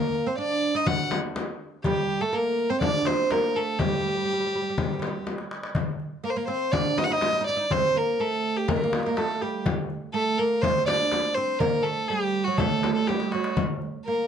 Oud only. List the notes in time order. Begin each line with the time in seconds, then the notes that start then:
Already playing: A#3
0.26 C4
0.38 D4
0.75 D#4
0.87 F#4
1.86 G3
2.21 A3
2.33 A#3
2.70 C4
2.83 D4
3.06 C4
3.31 A#3
3.56 A3
3.81 G3
3.88 G3
3.95 G3
4.01 G3
4.08 G3
4.17 G3
4.25 G3
4.33 G3
4.40 G3
4.46 G3
4.55 G3
4.62 G3
4.70 G3
4.78 G3
4.84 G3
4.93 G3
4.99 G3
5.07 G3
6.24 A#3
6.36 A#3
6.48 C4
6.73 D4
6.97 D#4
7.10 D#4
7.18 D#4
7.25 D#4
7.33 D#4
7.41 D#4
7.49 D#4
7.57 D#4
7.71 C4
7.96 A#3
8.20 A3
8.68 A#3
8.76 A3
8.84 A#3
9.06 A#3
9.18 A3
9.42 G3
10.14 A3
10.39 A#3
10.64 C4
10.88 D4
11.37 C4
11.60 A#3
11.84 A3
12.10 G3
12.47 F#3
12.60 A3
13.09 G3
13.34 F#3
14.08 A#3